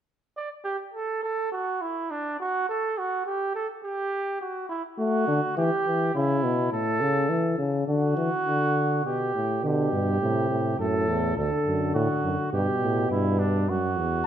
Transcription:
0.36 flugelhorn D5
0.64 flugelhorn G4
0.94 flugelhorn A4
1.23 flugelhorn A4
1.52 flugelhorn F#4
1.81 flugelhorn E4
2.11 flugelhorn D4
2.40 flugelhorn F#4
2.69 flugelhorn A4
2.98 flugelhorn F#4
3.26 flugelhorn G4
3.55 flugelhorn A4
3.84 flugelhorn G4
4.41 flugelhorn F#4
4.69 flugelhorn E4
4.98 euphonium A3, flugelhorn F#4
5.28 euphonium D3
5.57 euphonium E3, flugelhorn G4
5.86 euphonium E3
6.14 euphonium C#3, flugelhorn E4
6.43 euphonium B2
6.72 euphonium A2, flugelhorn A4
7.01 euphonium C#3
7.29 euphonium E3
7.58 euphonium C#3
7.87 euphonium D3, flugelhorn F#4
8.17 euphonium E3
8.46 euphonium D3
9.05 euphonium B2, flugelhorn G4
9.35 euphonium A2
9.63 euphonium B2, bass trombone D3, flugelhorn G4
9.92 bass trombone G2
10.21 bass trombone A2, euphonium C3
10.50 bass trombone A2
10.79 bass trombone F#2, euphonium A2, flugelhorn A4
11.08 bass trombone E2
11.37 bass trombone D2, euphonium D3, flugelhorn A4
11.66 bass trombone F#2
11.94 bass trombone A2, flugelhorn F#4
12.24 bass trombone F#2
12.53 bass trombone G2, euphonium B2, flugelhorn G4
12.82 bass trombone A2
13.10 bass trombone G2, flugelhorn E4
13.39 flugelhorn D4
13.69 bass trombone F#2, flugelhorn F#4
13.98 bass trombone E2

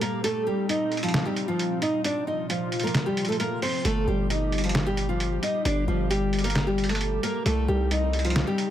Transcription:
Already playing: analog synth pad A#2 G3 G4
0.01 nylon-string guitar A#3 A#4, closed hi-hat
0.24 nylon-string guitar A3 A4, analog synth pad C4 D#4, closed hi-hat
0.47 nylon-string guitar G3 G4
0.69 nylon-string guitar D#4 D#5, closed hi-hat
0.92 closed hi-hat
0.97 closed hi-hat
1.03 nylon-string guitar F3 F4, closed hi-hat
1.08 closed hi-hat
1.14 snare, closed hi-hat
1.26 nylon-string guitar G3 G4
1.36 closed hi-hat
1.48 nylon-string guitar F3 F4
1.59 closed hi-hat
1.82 nylon-string guitar D#4 D#5, closed hi-hat
2.04 analog synth pad A#2 C3 F3 F4, nylon-string guitar D4 D5, closed hi-hat
2.27 nylon-string guitar D#4 D#5
2.50 nylon-string guitar F3 F4, closed hi-hat
2.72 closed hi-hat
2.80 nylon-string guitar A#4, closed hi-hat
2.84 nylon-string guitar A#3, closed hi-hat
2.94 snare, closed hi-hat
3.06 nylon-string guitar G3 G4
3.17 closed hi-hat
3.25 nylon-string guitar A4, closed hi-hat
3.29 nylon-string guitar A3, closed hi-hat
3.40 nylon-string guitar A#3 A#4, closed hi-hat
3.62 nylon-string guitar C4 C5, open hi-hat
3.85 808-style bass G1, analog synth pad G3 G4, nylon-string guitar A3 A4, closed hi-hat
4.07 808-style bass G1, nylon-string guitar G3 G4
4.30 nylon-string guitar D#4 D#5, closed hi-hat
4.52 closed hi-hat
4.58 closed hi-hat
4.64 nylon-string guitar F3 F4, closed hi-hat
4.69 closed hi-hat
4.75 snare, closed hi-hat
4.86 nylon-string guitar G3 G4
4.97 closed hi-hat
5.09 nylon-string guitar F3 F4
5.20 closed hi-hat
5.43 nylon-string guitar D#4 D#5, closed hi-hat
5.65 808-style bass G1, nylon-string guitar D4 D5, closed hi-hat
5.88 808-style bass G1, nylon-string guitar F3 F4
6.10 nylon-string guitar G3 G4, closed hi-hat
6.33 closed hi-hat
6.39 closed hi-hat
6.44 nylon-string guitar A#3 A#4, closed hi-hat
6.50 closed hi-hat
6.55 snare, closed hi-hat
6.67 nylon-string guitar G3 G4
6.78 closed hi-hat
6.84 closed hi-hat
6.89 nylon-string guitar A3 A4, closed hi-hat
6.95 closed hi-hat
7.01 closed hi-hat
7.23 nylon-string guitar A#3 A#4, closed hi-hat
7.46 808-style bass C2, nylon-string guitar A3 A4, analog synth pad C4 D#4, closed hi-hat
7.68 808-style bass C2, nylon-string guitar G3 G4
7.91 nylon-string guitar D#4 D#5, closed hi-hat
8.13 closed hi-hat
8.19 closed hi-hat
8.25 nylon-string guitar F3 F4, closed hi-hat
8.30 closed hi-hat
8.36 snare, closed hi-hat
8.47 nylon-string guitar G3 G4
8.58 closed hi-hat

